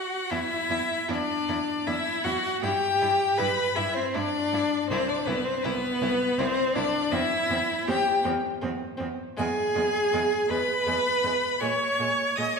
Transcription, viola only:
0.00 0.32 F#4 loud
0.30 1.10 E4 loud
1.08 1.89 D4 loud
1.87 2.26 E4 loud
2.24 2.62 F#4 loud
2.63 3.40 G4 loud
3.38 3.77 B4 loud
3.76 3.98 E4 loud
3.96 4.16 C4 medium
4.14 4.89 D4 loud
4.90 5.09 C4 loud
5.08 5.28 D4 loud
5.27 5.46 B3 loud
5.45 5.67 C4 medium
5.65 6.40 B3 loud
6.38 6.77 C4 loud
6.75 7.12 D4 loud
7.13 7.89 E4 loud
7.88 8.25 G4 loud
9.38 10.52 G#4 loud
10.50 11.61 B4 loud
11.62 12.39 C#5 loud
12.37 12.59 D#5 loud

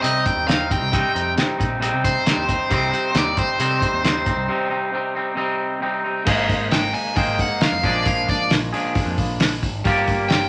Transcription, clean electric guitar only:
0.01 0.47 C3 medium
0.01 0.48 G3 medium
0.01 0.48 C4 medium
0.01 0.49 D#4 loud
0.47 0.91 C3 medium
0.47 0.72 G3 medium
0.47 0.71 C4 medium
0.47 0.69 D#4 medium
0.69 0.92 G3 soft
0.69 0.93 C4 medium
0.69 0.93 D#4 medium
0.92 1.37 C3 medium
0.92 1.17 G3 medium
0.92 1.16 C4 loud
0.92 1.14 D#4 loud
1.15 1.37 G3 soft
1.15 1.38 C4 soft
1.15 1.39 D#4 medium
1.37 1.80 C3 medium
1.37 1.60 G3 medium
1.37 1.59 C4 medium
1.37 1.58 D#4 medium
1.58 1.81 G3 medium
1.58 1.82 C4 medium
1.58 1.82 D#4 medium
1.80 2.25 C3 medium
1.80 2.26 G3 medium
1.80 2.27 C4 medium
1.80 2.27 D#4 medium
2.25 2.69 C3 medium
2.25 2.49 G3 medium
2.25 2.48 C4 medium
2.25 2.47 D#4 medium
2.47 2.70 G3 medium
2.47 2.71 C4 medium
2.47 2.71 D#4 medium
2.70 3.13 C3 medium
2.70 2.93 G3 medium
2.70 2.92 C4 loud
2.70 2.91 D#4 loud
2.91 3.15 G3 soft
2.91 3.15 C4 medium
2.91 3.16 D#4 medium
3.13 3.58 C3 medium
3.13 3.39 G3 medium
3.13 3.38 C4 medium
3.13 3.37 D#4 medium
3.37 3.59 G3 medium
3.37 3.60 C4 medium
3.37 3.61 D#4 medium
3.59 4.02 C3 medium
3.59 4.03 G3 medium
3.59 4.05 C4 medium
3.59 4.05 D#4 medium
4.03 4.47 C3 medium
4.03 4.27 G3 medium
4.03 4.27 C4 medium
4.03 4.26 D#4 medium
4.27 4.48 G3 soft
4.27 4.48 C4 medium
4.27 4.49 D#4 medium
4.49 4.91 C3 medium
4.49 4.71 G3 medium
4.49 4.70 C4 medium
4.49 4.69 D#4 medium
4.70 4.92 G3 medium
4.70 4.94 C4 medium
4.70 4.94 D#4 medium
4.93 5.34 C3 medium
4.93 5.16 G3 medium
4.93 5.15 C4 medium
4.93 5.14 D#4 medium
5.15 5.35 G3 medium
5.15 5.36 C4 medium
5.15 5.37 D#4 medium
5.35 5.80 C3 medium
5.35 5.81 G3 medium
5.35 5.81 C4 medium
5.35 5.82 D#4 medium
5.81 6.25 C3 medium
5.81 6.05 G3 medium
5.81 6.04 C4 medium
5.81 6.03 D#4 medium
6.04 6.26 G3 soft
6.04 6.26 C4 medium
6.04 6.25 D#4 medium
6.25 7.15 G#3 medium
6.25 7.16 A#3 medium
6.25 7.15 D#4 medium
6.25 7.17 G#4 medium
6.25 7.16 C5 medium
7.15 7.82 G#3 medium
7.15 7.83 A#3 medium
7.15 7.83 D#4 medium
7.15 7.83 G#4 medium
7.15 7.83 C5 medium
7.82 8.71 A#2 medium
7.82 8.74 F3 medium
7.82 8.72 G#3 medium
7.82 8.73 D4 medium
7.82 8.71 G#4 medium
8.73 9.62 A#2 medium
8.73 9.84 F3 medium
8.73 9.62 G#3 medium
8.73 9.62 D4 medium
8.73 9.61 G#4 medium
9.84 10.49 G3 loud
9.84 10.49 A#3 loud
9.84 10.49 F4 medium
9.84 10.49 G4 medium
9.84 10.49 D5 loud

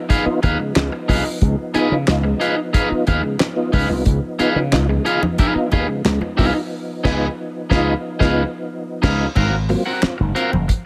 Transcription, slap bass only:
0.26 muted slap bass stroke soft
0.44 0.56 D#2 medium
0.76 0.88 C#2 medium
1.09 1.21 C2 medium
1.42 1.54 C#2 loud
1.75 muted slap bass stroke soft
1.92 2.04 C#3 loud
2.08 2.33 C#2 medium
2.91 muted slap bass stroke soft
3.08 3.20 D#2 medium
3.73 3.86 C#2 medium
3.90 4.02 C2 medium
4.06 4.19 C#2 loud
4.40 muted slap bass stroke soft
4.56 4.74 C#3 loud
4.73 4.98 C#2 medium
5.55 muted slap bass stroke medium
5.73 5.85 D#2 medium
6.05 6.17 C#2 loud
6.39 6.51 C2 medium
7.05 7.27 C#2 loud
7.71 7.93 C#2 medium
8.21 8.43 C#2 loud
9.03 9.26 C#2 medium
9.36 9.74 G#1 loud
10.03 muted slap bass stroke soft
10.20 10.32 F#1 medium
10.53 10.65 F#1 medium

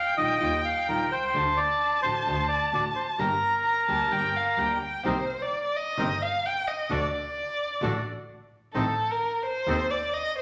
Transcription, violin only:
0.00 1.37 G5 medium
1.36 3.21 A5 medium
3.20 3.65 A#5 medium
3.66 3.88 A#5 medium
3.89 4.14 A5 medium
4.12 4.38 G5 medium
4.36 4.61 F5 medium
4.59 4.82 G5 medium
4.83 5.04 G5 medium
5.06 5.44 C5 medium
5.42 5.78 D5 medium
5.77 6.24 D#5 medium
6.22 6.47 F5 medium
6.46 6.69 G5 medium
6.68 6.93 D#5 medium
6.92 7.12 D5 medium
7.12 8.01 D5 medium
8.74 9.12 A4 medium
9.11 9.45 A#4 medium
9.45 9.93 C5 medium
9.91 10.15 D5 medium
10.13 10.37 D#5 medium
10.39 10.42 C5 medium

